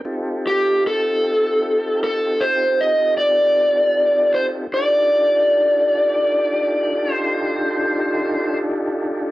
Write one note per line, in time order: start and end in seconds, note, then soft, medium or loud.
0.05 4.67 C4 medium
0.05 4.67 D#4 medium
0.05 4.67 F4 medium
0.05 4.67 G4 medium
0.05 4.67 A4 medium
0.47 0.86 G4 medium
0.87 2.03 A4 medium
2.04 2.41 A4 medium
2.41 2.79 C5 medium
2.81 3.17 D#5 loud
3.17 4.37 D5 medium
4.35 4.45 C5 medium
4.72 9.31 D4 medium
4.72 9.31 D#4 medium
4.72 9.31 F4 medium
4.72 9.31 G4 medium
4.72 9.31 A4 medium
4.72 7.14 D5 medium
7.14 8.57 C5 medium